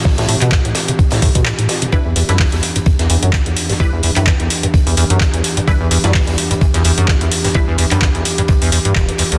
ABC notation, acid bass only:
X:1
M:4/4
L:1/16
Q:"Swing 16ths" 1/4=128
K:Em
V:1 name="Acid bass" clef=bass
A,, A,, A,, B,, A,, A,, z C, A,, A,, A,, B,, A,, A,, z C, | E,, E,, E,, F,, E,, E,, z G,, E,, E,, E,, F,, E,, E,, z G,, | E,, E,, E,, F,, E,, E,, z G,, E,, E,, E,, F,, E,, E,, z G,, | E,, E,, E,, F,, E,, E,, z G,, E,, E,, E,, F,, E,, E,, z G,, |
E,, E,, E,, F,, E,, E,, z G,, E,, E,, E,, G,, E,,, B,, E,, D,, |]